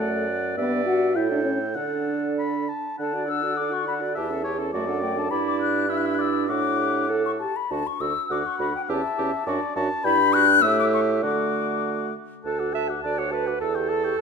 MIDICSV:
0, 0, Header, 1, 6, 480
1, 0, Start_track
1, 0, Key_signature, 2, "major"
1, 0, Tempo, 581395
1, 471, Time_signature, 2, 2, 24, 8
1, 957, Tempo, 610376
1, 2397, Tempo, 579710
1, 4797, Tempo, 601202
1, 6717, Tempo, 582524
1, 8637, Tempo, 606673
1, 10077, Tempo, 581959
1, 11534, End_track
2, 0, Start_track
2, 0, Title_t, "Flute"
2, 0, Program_c, 0, 73
2, 0, Note_on_c, 0, 69, 53
2, 223, Note_off_c, 0, 69, 0
2, 473, Note_on_c, 0, 71, 57
2, 527, Note_off_c, 0, 71, 0
2, 708, Note_on_c, 0, 78, 67
2, 954, Note_on_c, 0, 76, 58
2, 966, Note_off_c, 0, 78, 0
2, 1059, Note_off_c, 0, 76, 0
2, 1063, Note_on_c, 0, 74, 57
2, 1111, Note_off_c, 0, 74, 0
2, 1186, Note_on_c, 0, 73, 51
2, 1241, Note_off_c, 0, 73, 0
2, 1428, Note_on_c, 0, 74, 51
2, 2143, Note_off_c, 0, 74, 0
2, 2392, Note_on_c, 0, 81, 57
2, 2623, Note_off_c, 0, 81, 0
2, 2636, Note_on_c, 0, 88, 62
2, 2878, Note_on_c, 0, 86, 63
2, 2891, Note_off_c, 0, 88, 0
2, 3010, Note_on_c, 0, 85, 62
2, 3023, Note_off_c, 0, 86, 0
2, 3125, Note_off_c, 0, 85, 0
2, 3130, Note_on_c, 0, 83, 54
2, 3183, Note_off_c, 0, 83, 0
2, 3365, Note_on_c, 0, 81, 65
2, 3970, Note_on_c, 0, 78, 65
2, 3982, Note_off_c, 0, 81, 0
2, 4081, Note_on_c, 0, 79, 71
2, 4093, Note_off_c, 0, 78, 0
2, 4214, Note_on_c, 0, 81, 72
2, 4227, Note_off_c, 0, 79, 0
2, 4317, Note_on_c, 0, 83, 71
2, 4329, Note_off_c, 0, 81, 0
2, 4435, Note_off_c, 0, 83, 0
2, 4450, Note_on_c, 0, 86, 70
2, 4560, Note_off_c, 0, 86, 0
2, 4567, Note_on_c, 0, 90, 74
2, 4805, Note_on_c, 0, 88, 59
2, 4817, Note_off_c, 0, 90, 0
2, 4866, Note_on_c, 0, 90, 64
2, 4878, Note_off_c, 0, 88, 0
2, 4928, Note_on_c, 0, 88, 60
2, 4940, Note_off_c, 0, 90, 0
2, 5001, Note_on_c, 0, 90, 56
2, 5013, Note_off_c, 0, 88, 0
2, 5054, Note_on_c, 0, 88, 61
2, 5066, Note_off_c, 0, 90, 0
2, 5263, Note_off_c, 0, 88, 0
2, 5268, Note_on_c, 0, 86, 78
2, 5747, Note_off_c, 0, 86, 0
2, 5890, Note_on_c, 0, 85, 70
2, 5938, Note_off_c, 0, 85, 0
2, 5997, Note_on_c, 0, 81, 59
2, 6134, Note_on_c, 0, 83, 65
2, 6146, Note_off_c, 0, 81, 0
2, 6251, Note_on_c, 0, 81, 73
2, 6263, Note_off_c, 0, 83, 0
2, 6378, Note_on_c, 0, 85, 63
2, 6390, Note_off_c, 0, 81, 0
2, 6489, Note_on_c, 0, 88, 72
2, 6501, Note_off_c, 0, 85, 0
2, 6736, Note_on_c, 0, 86, 63
2, 6749, Note_off_c, 0, 88, 0
2, 6856, Note_on_c, 0, 85, 62
2, 6868, Note_off_c, 0, 86, 0
2, 6960, Note_off_c, 0, 85, 0
2, 6965, Note_on_c, 0, 83, 55
2, 7083, Note_off_c, 0, 83, 0
2, 7100, Note_on_c, 0, 79, 64
2, 7149, Note_off_c, 0, 79, 0
2, 7219, Note_on_c, 0, 81, 69
2, 7913, Note_off_c, 0, 81, 0
2, 8155, Note_on_c, 0, 83, 96
2, 8398, Note_on_c, 0, 90, 101
2, 8410, Note_off_c, 0, 83, 0
2, 8632, Note_on_c, 0, 88, 89
2, 8644, Note_off_c, 0, 90, 0
2, 8753, Note_off_c, 0, 88, 0
2, 8772, Note_on_c, 0, 86, 82
2, 8820, Note_off_c, 0, 86, 0
2, 8886, Note_on_c, 0, 85, 74
2, 8939, Note_off_c, 0, 85, 0
2, 9126, Note_on_c, 0, 86, 64
2, 9830, Note_off_c, 0, 86, 0
2, 10085, Note_on_c, 0, 90, 33
2, 10202, Note_on_c, 0, 86, 34
2, 10214, Note_off_c, 0, 90, 0
2, 10324, Note_on_c, 0, 90, 37
2, 10337, Note_off_c, 0, 86, 0
2, 10452, Note_on_c, 0, 86, 34
2, 10464, Note_off_c, 0, 90, 0
2, 10558, Note_off_c, 0, 86, 0
2, 10563, Note_on_c, 0, 90, 33
2, 10692, Note_on_c, 0, 86, 35
2, 10704, Note_off_c, 0, 90, 0
2, 10808, Note_on_c, 0, 90, 34
2, 10821, Note_off_c, 0, 86, 0
2, 10928, Note_on_c, 0, 86, 32
2, 10940, Note_off_c, 0, 90, 0
2, 11037, Note_off_c, 0, 86, 0
2, 11042, Note_on_c, 0, 88, 43
2, 11156, Note_on_c, 0, 85, 37
2, 11168, Note_off_c, 0, 88, 0
2, 11272, Note_on_c, 0, 88, 40
2, 11284, Note_off_c, 0, 85, 0
2, 11394, Note_on_c, 0, 85, 40
2, 11406, Note_off_c, 0, 88, 0
2, 11511, Note_off_c, 0, 85, 0
2, 11534, End_track
3, 0, Start_track
3, 0, Title_t, "Oboe"
3, 0, Program_c, 1, 68
3, 0, Note_on_c, 1, 78, 54
3, 466, Note_off_c, 1, 78, 0
3, 474, Note_on_c, 1, 76, 48
3, 956, Note_on_c, 1, 79, 58
3, 968, Note_off_c, 1, 76, 0
3, 1425, Note_on_c, 1, 78, 44
3, 1436, Note_off_c, 1, 79, 0
3, 1866, Note_off_c, 1, 78, 0
3, 1925, Note_on_c, 1, 83, 53
3, 2162, Note_on_c, 1, 81, 41
3, 2174, Note_off_c, 1, 83, 0
3, 2388, Note_off_c, 1, 81, 0
3, 2393, Note_on_c, 1, 78, 52
3, 3331, Note_off_c, 1, 78, 0
3, 3359, Note_on_c, 1, 76, 47
3, 3597, Note_off_c, 1, 76, 0
3, 3601, Note_on_c, 1, 73, 49
3, 3708, Note_off_c, 1, 73, 0
3, 3840, Note_on_c, 1, 74, 55
3, 4304, Note_off_c, 1, 74, 0
3, 4313, Note_on_c, 1, 74, 57
3, 4788, Note_off_c, 1, 74, 0
3, 4808, Note_on_c, 1, 76, 61
3, 5029, Note_off_c, 1, 76, 0
3, 5034, Note_on_c, 1, 74, 56
3, 5283, Note_on_c, 1, 78, 54
3, 5295, Note_off_c, 1, 74, 0
3, 6005, Note_off_c, 1, 78, 0
3, 6724, Note_on_c, 1, 78, 58
3, 7212, Note_on_c, 1, 76, 59
3, 7224, Note_off_c, 1, 78, 0
3, 7682, Note_off_c, 1, 76, 0
3, 7687, Note_on_c, 1, 74, 64
3, 7917, Note_off_c, 1, 74, 0
3, 7927, Note_on_c, 1, 81, 77
3, 8163, Note_on_c, 1, 79, 70
3, 8176, Note_off_c, 1, 81, 0
3, 8632, Note_off_c, 1, 79, 0
3, 8636, Note_on_c, 1, 76, 78
3, 9103, Note_off_c, 1, 76, 0
3, 9118, Note_on_c, 1, 78, 50
3, 9826, Note_off_c, 1, 78, 0
3, 10082, Note_on_c, 1, 81, 31
3, 10199, Note_on_c, 1, 78, 34
3, 10211, Note_off_c, 1, 81, 0
3, 10317, Note_on_c, 1, 81, 33
3, 10330, Note_off_c, 1, 78, 0
3, 10440, Note_on_c, 1, 78, 37
3, 10453, Note_off_c, 1, 81, 0
3, 10557, Note_off_c, 1, 78, 0
3, 10562, Note_on_c, 1, 81, 39
3, 10688, Note_on_c, 1, 78, 36
3, 10700, Note_off_c, 1, 81, 0
3, 10797, Note_on_c, 1, 81, 41
3, 10810, Note_off_c, 1, 78, 0
3, 10923, Note_on_c, 1, 78, 36
3, 10935, Note_off_c, 1, 81, 0
3, 11029, Note_off_c, 1, 78, 0
3, 11034, Note_on_c, 1, 81, 37
3, 11154, Note_on_c, 1, 79, 37
3, 11167, Note_off_c, 1, 81, 0
3, 11272, Note_on_c, 1, 81, 44
3, 11284, Note_off_c, 1, 79, 0
3, 11399, Note_on_c, 1, 79, 50
3, 11411, Note_off_c, 1, 81, 0
3, 11511, Note_off_c, 1, 79, 0
3, 11534, End_track
4, 0, Start_track
4, 0, Title_t, "Clarinet"
4, 0, Program_c, 2, 71
4, 0, Note_on_c, 2, 74, 48
4, 469, Note_off_c, 2, 74, 0
4, 474, Note_on_c, 2, 74, 57
4, 925, Note_off_c, 2, 74, 0
4, 951, Note_on_c, 2, 69, 53
4, 1420, Note_off_c, 2, 69, 0
4, 1431, Note_on_c, 2, 69, 41
4, 2144, Note_off_c, 2, 69, 0
4, 2404, Note_on_c, 2, 69, 45
4, 2526, Note_on_c, 2, 74, 41
4, 2539, Note_off_c, 2, 69, 0
4, 2648, Note_on_c, 2, 69, 39
4, 2661, Note_off_c, 2, 74, 0
4, 2773, Note_on_c, 2, 74, 39
4, 2785, Note_off_c, 2, 69, 0
4, 2890, Note_off_c, 2, 74, 0
4, 2898, Note_on_c, 2, 69, 41
4, 3013, Note_on_c, 2, 74, 37
4, 3025, Note_off_c, 2, 69, 0
4, 3134, Note_on_c, 2, 69, 37
4, 3147, Note_off_c, 2, 74, 0
4, 3247, Note_on_c, 2, 74, 41
4, 3259, Note_off_c, 2, 69, 0
4, 3362, Note_off_c, 2, 74, 0
4, 3367, Note_on_c, 2, 67, 46
4, 3489, Note_on_c, 2, 69, 42
4, 3502, Note_off_c, 2, 67, 0
4, 3602, Note_on_c, 2, 67, 46
4, 3614, Note_off_c, 2, 69, 0
4, 3722, Note_on_c, 2, 69, 46
4, 3735, Note_off_c, 2, 67, 0
4, 3831, Note_off_c, 2, 69, 0
4, 3836, Note_on_c, 2, 66, 50
4, 3953, Note_on_c, 2, 69, 45
4, 3966, Note_off_c, 2, 66, 0
4, 4066, Note_on_c, 2, 66, 42
4, 4078, Note_off_c, 2, 69, 0
4, 4190, Note_on_c, 2, 69, 46
4, 4203, Note_off_c, 2, 66, 0
4, 4306, Note_off_c, 2, 69, 0
4, 4311, Note_on_c, 2, 64, 61
4, 4763, Note_off_c, 2, 64, 0
4, 4792, Note_on_c, 2, 64, 59
4, 5270, Note_on_c, 2, 66, 50
4, 5282, Note_off_c, 2, 64, 0
4, 5512, Note_on_c, 2, 67, 49
4, 5524, Note_off_c, 2, 66, 0
4, 5758, Note_on_c, 2, 69, 54
4, 5770, Note_off_c, 2, 67, 0
4, 6000, Note_off_c, 2, 69, 0
4, 6250, Note_on_c, 2, 66, 46
4, 6355, Note_off_c, 2, 66, 0
4, 6482, Note_on_c, 2, 66, 46
4, 6589, Note_off_c, 2, 66, 0
4, 6720, Note_on_c, 2, 66, 45
4, 6829, Note_off_c, 2, 66, 0
4, 6967, Note_on_c, 2, 66, 44
4, 7075, Note_off_c, 2, 66, 0
4, 7207, Note_on_c, 2, 67, 60
4, 7315, Note_off_c, 2, 67, 0
4, 7446, Note_on_c, 2, 67, 57
4, 7553, Note_off_c, 2, 67, 0
4, 7693, Note_on_c, 2, 66, 54
4, 7797, Note_off_c, 2, 66, 0
4, 7920, Note_on_c, 2, 66, 53
4, 8027, Note_off_c, 2, 66, 0
4, 8169, Note_on_c, 2, 64, 65
4, 8274, Note_off_c, 2, 64, 0
4, 8408, Note_on_c, 2, 66, 61
4, 8514, Note_off_c, 2, 66, 0
4, 8643, Note_on_c, 2, 67, 59
4, 9107, Note_off_c, 2, 67, 0
4, 9117, Note_on_c, 2, 66, 52
4, 9825, Note_off_c, 2, 66, 0
4, 10080, Note_on_c, 2, 69, 53
4, 10308, Note_off_c, 2, 69, 0
4, 10325, Note_on_c, 2, 76, 59
4, 10435, Note_off_c, 2, 76, 0
4, 10567, Note_on_c, 2, 74, 53
4, 10687, Note_on_c, 2, 73, 51
4, 10700, Note_off_c, 2, 74, 0
4, 10799, Note_off_c, 2, 73, 0
4, 10804, Note_on_c, 2, 71, 47
4, 11033, Note_off_c, 2, 71, 0
4, 11038, Note_on_c, 2, 69, 68
4, 11534, Note_off_c, 2, 69, 0
4, 11534, End_track
5, 0, Start_track
5, 0, Title_t, "French horn"
5, 0, Program_c, 3, 60
5, 0, Note_on_c, 3, 57, 58
5, 220, Note_off_c, 3, 57, 0
5, 471, Note_on_c, 3, 59, 74
5, 696, Note_off_c, 3, 59, 0
5, 707, Note_on_c, 3, 66, 84
5, 954, Note_on_c, 3, 64, 73
5, 966, Note_off_c, 3, 66, 0
5, 1073, Note_off_c, 3, 64, 0
5, 1078, Note_on_c, 3, 62, 69
5, 1177, Note_off_c, 3, 62, 0
5, 1182, Note_on_c, 3, 61, 56
5, 1292, Note_off_c, 3, 61, 0
5, 1432, Note_on_c, 3, 62, 57
5, 2145, Note_off_c, 3, 62, 0
5, 2388, Note_on_c, 3, 62, 39
5, 2517, Note_on_c, 3, 66, 37
5, 2529, Note_off_c, 3, 62, 0
5, 2632, Note_on_c, 3, 62, 41
5, 2644, Note_off_c, 3, 66, 0
5, 2760, Note_on_c, 3, 66, 37
5, 2773, Note_off_c, 3, 62, 0
5, 2874, Note_off_c, 3, 66, 0
5, 2879, Note_on_c, 3, 62, 41
5, 2999, Note_on_c, 3, 66, 40
5, 3011, Note_off_c, 3, 62, 0
5, 3119, Note_on_c, 3, 62, 40
5, 3132, Note_off_c, 3, 66, 0
5, 3237, Note_on_c, 3, 66, 42
5, 3250, Note_off_c, 3, 62, 0
5, 3360, Note_off_c, 3, 66, 0
5, 3365, Note_on_c, 3, 64, 45
5, 3481, Note_on_c, 3, 61, 45
5, 3494, Note_off_c, 3, 64, 0
5, 3596, Note_on_c, 3, 64, 43
5, 3609, Note_off_c, 3, 61, 0
5, 3716, Note_on_c, 3, 61, 44
5, 3729, Note_off_c, 3, 64, 0
5, 3834, Note_off_c, 3, 61, 0
5, 3839, Note_on_c, 3, 57, 55
5, 3954, Note_on_c, 3, 62, 46
5, 3966, Note_off_c, 3, 57, 0
5, 4079, Note_on_c, 3, 57, 51
5, 4092, Note_off_c, 3, 62, 0
5, 4200, Note_on_c, 3, 62, 50
5, 4212, Note_off_c, 3, 57, 0
5, 4307, Note_off_c, 3, 62, 0
5, 4312, Note_on_c, 3, 62, 58
5, 4764, Note_off_c, 3, 62, 0
5, 4805, Note_on_c, 3, 62, 65
5, 5271, Note_off_c, 3, 62, 0
5, 5283, Note_on_c, 3, 62, 50
5, 5754, Note_off_c, 3, 62, 0
5, 5764, Note_on_c, 3, 69, 62
5, 5871, Note_off_c, 3, 69, 0
5, 6004, Note_on_c, 3, 67, 49
5, 6112, Note_off_c, 3, 67, 0
5, 6247, Note_on_c, 3, 62, 45
5, 6353, Note_off_c, 3, 62, 0
5, 6487, Note_on_c, 3, 62, 43
5, 6592, Note_off_c, 3, 62, 0
5, 6727, Note_on_c, 3, 62, 48
5, 6835, Note_off_c, 3, 62, 0
5, 6963, Note_on_c, 3, 62, 43
5, 7072, Note_off_c, 3, 62, 0
5, 7207, Note_on_c, 3, 61, 58
5, 7314, Note_off_c, 3, 61, 0
5, 7454, Note_on_c, 3, 61, 58
5, 7559, Note_off_c, 3, 61, 0
5, 7695, Note_on_c, 3, 62, 60
5, 7799, Note_off_c, 3, 62, 0
5, 7925, Note_on_c, 3, 62, 57
5, 8031, Note_off_c, 3, 62, 0
5, 8160, Note_on_c, 3, 62, 65
5, 8640, Note_on_c, 3, 57, 75
5, 8652, Note_off_c, 3, 62, 0
5, 9115, Note_off_c, 3, 57, 0
5, 9123, Note_on_c, 3, 57, 52
5, 9828, Note_off_c, 3, 57, 0
5, 10076, Note_on_c, 3, 69, 40
5, 10203, Note_on_c, 3, 66, 37
5, 10216, Note_off_c, 3, 69, 0
5, 10324, Note_on_c, 3, 69, 36
5, 10336, Note_off_c, 3, 66, 0
5, 10450, Note_on_c, 3, 66, 36
5, 10462, Note_off_c, 3, 69, 0
5, 10564, Note_off_c, 3, 66, 0
5, 10569, Note_on_c, 3, 69, 38
5, 10689, Note_on_c, 3, 66, 34
5, 10701, Note_off_c, 3, 69, 0
5, 10810, Note_on_c, 3, 69, 35
5, 10822, Note_off_c, 3, 66, 0
5, 10931, Note_on_c, 3, 66, 39
5, 10944, Note_off_c, 3, 69, 0
5, 11047, Note_off_c, 3, 66, 0
5, 11054, Note_on_c, 3, 69, 40
5, 11166, Note_on_c, 3, 67, 41
5, 11179, Note_off_c, 3, 69, 0
5, 11287, Note_on_c, 3, 69, 41
5, 11300, Note_off_c, 3, 67, 0
5, 11399, Note_on_c, 3, 67, 42
5, 11411, Note_off_c, 3, 69, 0
5, 11510, Note_off_c, 3, 67, 0
5, 11534, End_track
6, 0, Start_track
6, 0, Title_t, "Bassoon"
6, 0, Program_c, 4, 70
6, 0, Note_on_c, 4, 42, 56
6, 467, Note_off_c, 4, 42, 0
6, 472, Note_on_c, 4, 43, 63
6, 962, Note_on_c, 4, 45, 64
6, 973, Note_off_c, 4, 43, 0
6, 1434, Note_on_c, 4, 50, 51
6, 1446, Note_off_c, 4, 45, 0
6, 2161, Note_off_c, 4, 50, 0
6, 2403, Note_on_c, 4, 50, 53
6, 3336, Note_off_c, 4, 50, 0
6, 3375, Note_on_c, 4, 40, 58
6, 3837, Note_off_c, 4, 40, 0
6, 3846, Note_on_c, 4, 42, 63
6, 4307, Note_off_c, 4, 42, 0
6, 4320, Note_on_c, 4, 43, 72
6, 5285, Note_on_c, 4, 45, 60
6, 5297, Note_off_c, 4, 43, 0
6, 6006, Note_off_c, 4, 45, 0
6, 6246, Note_on_c, 4, 38, 53
6, 6353, Note_off_c, 4, 38, 0
6, 6484, Note_on_c, 4, 38, 49
6, 6591, Note_off_c, 4, 38, 0
6, 6722, Note_on_c, 4, 38, 56
6, 6831, Note_off_c, 4, 38, 0
6, 6961, Note_on_c, 4, 38, 49
6, 7071, Note_off_c, 4, 38, 0
6, 7208, Note_on_c, 4, 40, 63
6, 7315, Note_off_c, 4, 40, 0
6, 7451, Note_on_c, 4, 40, 51
6, 7557, Note_off_c, 4, 40, 0
6, 7683, Note_on_c, 4, 42, 68
6, 7789, Note_off_c, 4, 42, 0
6, 7925, Note_on_c, 4, 42, 67
6, 8031, Note_off_c, 4, 42, 0
6, 8160, Note_on_c, 4, 43, 81
6, 8644, Note_on_c, 4, 45, 87
6, 8656, Note_off_c, 4, 43, 0
6, 9117, Note_on_c, 4, 50, 65
6, 9129, Note_off_c, 4, 45, 0
6, 9840, Note_off_c, 4, 50, 0
6, 10085, Note_on_c, 4, 38, 45
6, 10515, Note_off_c, 4, 38, 0
6, 10573, Note_on_c, 4, 38, 50
6, 10991, Note_off_c, 4, 38, 0
6, 11044, Note_on_c, 4, 40, 55
6, 11463, Note_off_c, 4, 40, 0
6, 11534, End_track
0, 0, End_of_file